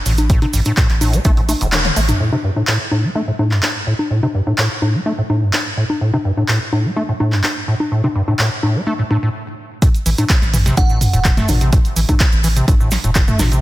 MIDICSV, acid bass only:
0, 0, Header, 1, 2, 480
1, 0, Start_track
1, 0, Tempo, 476190
1, 299, Time_signature, 4, 2, 24, 8
1, 13721, End_track
2, 0, Start_track
2, 0, Title_t, "Acid bass"
2, 0, Program_c, 0, 38
2, 60, Note_on_c, 0, 45, 80
2, 128, Note_off_c, 0, 45, 0
2, 300, Note_on_c, 0, 45, 84
2, 403, Note_off_c, 0, 45, 0
2, 425, Note_on_c, 0, 48, 103
2, 463, Note_off_c, 0, 48, 0
2, 539, Note_on_c, 0, 43, 79
2, 608, Note_off_c, 0, 43, 0
2, 665, Note_on_c, 0, 45, 78
2, 728, Note_off_c, 0, 45, 0
2, 780, Note_on_c, 0, 45, 80
2, 883, Note_off_c, 0, 45, 0
2, 1021, Note_on_c, 0, 45, 73
2, 1144, Note_on_c, 0, 57, 76
2, 1159, Note_off_c, 0, 45, 0
2, 1207, Note_off_c, 0, 57, 0
2, 1259, Note_on_c, 0, 57, 105
2, 1328, Note_off_c, 0, 57, 0
2, 1383, Note_on_c, 0, 45, 76
2, 1422, Note_off_c, 0, 45, 0
2, 1499, Note_on_c, 0, 57, 80
2, 1541, Note_off_c, 0, 57, 0
2, 1623, Note_on_c, 0, 33, 103
2, 1687, Note_off_c, 0, 33, 0
2, 1979, Note_on_c, 0, 57, 104
2, 2021, Note_off_c, 0, 57, 0
2, 2219, Note_on_c, 0, 45, 84
2, 2322, Note_off_c, 0, 45, 0
2, 2344, Note_on_c, 0, 48, 104
2, 2382, Note_off_c, 0, 48, 0
2, 2459, Note_on_c, 0, 43, 77
2, 2528, Note_off_c, 0, 43, 0
2, 2585, Note_on_c, 0, 45, 75
2, 2648, Note_off_c, 0, 45, 0
2, 2700, Note_on_c, 0, 45, 79
2, 2802, Note_off_c, 0, 45, 0
2, 2939, Note_on_c, 0, 45, 74
2, 3064, Note_on_c, 0, 57, 74
2, 3079, Note_off_c, 0, 45, 0
2, 3128, Note_off_c, 0, 57, 0
2, 3178, Note_on_c, 0, 57, 99
2, 3247, Note_off_c, 0, 57, 0
2, 3303, Note_on_c, 0, 45, 73
2, 3342, Note_off_c, 0, 45, 0
2, 3418, Note_on_c, 0, 45, 76
2, 3544, Note_on_c, 0, 43, 75
2, 3559, Note_off_c, 0, 45, 0
2, 3639, Note_off_c, 0, 43, 0
2, 3900, Note_on_c, 0, 45, 78
2, 3968, Note_off_c, 0, 45, 0
2, 4138, Note_on_c, 0, 45, 81
2, 4242, Note_off_c, 0, 45, 0
2, 4264, Note_on_c, 0, 48, 98
2, 4302, Note_off_c, 0, 48, 0
2, 4380, Note_on_c, 0, 43, 77
2, 4448, Note_off_c, 0, 43, 0
2, 4505, Note_on_c, 0, 45, 77
2, 4568, Note_off_c, 0, 45, 0
2, 4619, Note_on_c, 0, 45, 81
2, 4722, Note_off_c, 0, 45, 0
2, 4859, Note_on_c, 0, 45, 73
2, 4984, Note_on_c, 0, 57, 75
2, 4999, Note_off_c, 0, 45, 0
2, 5047, Note_off_c, 0, 57, 0
2, 5099, Note_on_c, 0, 57, 100
2, 5168, Note_off_c, 0, 57, 0
2, 5224, Note_on_c, 0, 45, 73
2, 5262, Note_off_c, 0, 45, 0
2, 5340, Note_on_c, 0, 45, 76
2, 5465, Note_on_c, 0, 43, 74
2, 5480, Note_off_c, 0, 45, 0
2, 5560, Note_off_c, 0, 43, 0
2, 5820, Note_on_c, 0, 45, 75
2, 5888, Note_off_c, 0, 45, 0
2, 6059, Note_on_c, 0, 45, 80
2, 6162, Note_off_c, 0, 45, 0
2, 6185, Note_on_c, 0, 48, 105
2, 6222, Note_off_c, 0, 48, 0
2, 6299, Note_on_c, 0, 43, 77
2, 6368, Note_off_c, 0, 43, 0
2, 6424, Note_on_c, 0, 45, 77
2, 6488, Note_off_c, 0, 45, 0
2, 6539, Note_on_c, 0, 45, 77
2, 6642, Note_off_c, 0, 45, 0
2, 6780, Note_on_c, 0, 45, 73
2, 6903, Note_on_c, 0, 57, 74
2, 6918, Note_off_c, 0, 45, 0
2, 6967, Note_off_c, 0, 57, 0
2, 7019, Note_on_c, 0, 57, 99
2, 7088, Note_off_c, 0, 57, 0
2, 7144, Note_on_c, 0, 45, 76
2, 7182, Note_off_c, 0, 45, 0
2, 7261, Note_on_c, 0, 45, 75
2, 7385, Note_on_c, 0, 43, 78
2, 7400, Note_off_c, 0, 45, 0
2, 7480, Note_off_c, 0, 43, 0
2, 7741, Note_on_c, 0, 45, 78
2, 7809, Note_off_c, 0, 45, 0
2, 7979, Note_on_c, 0, 45, 80
2, 8082, Note_off_c, 0, 45, 0
2, 8104, Note_on_c, 0, 48, 104
2, 8142, Note_off_c, 0, 48, 0
2, 8219, Note_on_c, 0, 43, 80
2, 8288, Note_off_c, 0, 43, 0
2, 8344, Note_on_c, 0, 45, 73
2, 8408, Note_off_c, 0, 45, 0
2, 8457, Note_on_c, 0, 45, 82
2, 8561, Note_off_c, 0, 45, 0
2, 8698, Note_on_c, 0, 45, 74
2, 8824, Note_on_c, 0, 57, 78
2, 8839, Note_off_c, 0, 45, 0
2, 8888, Note_off_c, 0, 57, 0
2, 8938, Note_on_c, 0, 57, 104
2, 9008, Note_off_c, 0, 57, 0
2, 9063, Note_on_c, 0, 45, 73
2, 9102, Note_off_c, 0, 45, 0
2, 9178, Note_on_c, 0, 45, 101
2, 9247, Note_off_c, 0, 45, 0
2, 9302, Note_on_c, 0, 45, 76
2, 9367, Note_off_c, 0, 45, 0
2, 9901, Note_on_c, 0, 45, 86
2, 9969, Note_off_c, 0, 45, 0
2, 10140, Note_on_c, 0, 52, 79
2, 10181, Note_off_c, 0, 52, 0
2, 10265, Note_on_c, 0, 45, 76
2, 10328, Note_off_c, 0, 45, 0
2, 10621, Note_on_c, 0, 52, 74
2, 10661, Note_off_c, 0, 52, 0
2, 10745, Note_on_c, 0, 48, 78
2, 10840, Note_off_c, 0, 48, 0
2, 10859, Note_on_c, 0, 45, 80
2, 10928, Note_off_c, 0, 45, 0
2, 10984, Note_on_c, 0, 45, 77
2, 11079, Note_off_c, 0, 45, 0
2, 11224, Note_on_c, 0, 45, 80
2, 11288, Note_off_c, 0, 45, 0
2, 11340, Note_on_c, 0, 45, 83
2, 11408, Note_off_c, 0, 45, 0
2, 11464, Note_on_c, 0, 57, 106
2, 11578, Note_on_c, 0, 45, 100
2, 11593, Note_off_c, 0, 57, 0
2, 11682, Note_off_c, 0, 45, 0
2, 11704, Note_on_c, 0, 48, 77
2, 11799, Note_off_c, 0, 48, 0
2, 11819, Note_on_c, 0, 45, 85
2, 11888, Note_off_c, 0, 45, 0
2, 12059, Note_on_c, 0, 52, 82
2, 12100, Note_off_c, 0, 52, 0
2, 12183, Note_on_c, 0, 45, 77
2, 12247, Note_off_c, 0, 45, 0
2, 12539, Note_on_c, 0, 52, 77
2, 12580, Note_off_c, 0, 52, 0
2, 12665, Note_on_c, 0, 48, 81
2, 12760, Note_off_c, 0, 48, 0
2, 12781, Note_on_c, 0, 45, 87
2, 12849, Note_off_c, 0, 45, 0
2, 12906, Note_on_c, 0, 45, 82
2, 13000, Note_off_c, 0, 45, 0
2, 13146, Note_on_c, 0, 45, 80
2, 13209, Note_off_c, 0, 45, 0
2, 13260, Note_on_c, 0, 45, 84
2, 13328, Note_off_c, 0, 45, 0
2, 13386, Note_on_c, 0, 57, 109
2, 13502, Note_on_c, 0, 45, 106
2, 13517, Note_off_c, 0, 57, 0
2, 13604, Note_off_c, 0, 45, 0
2, 13626, Note_on_c, 0, 48, 79
2, 13720, Note_off_c, 0, 48, 0
2, 13721, End_track
0, 0, End_of_file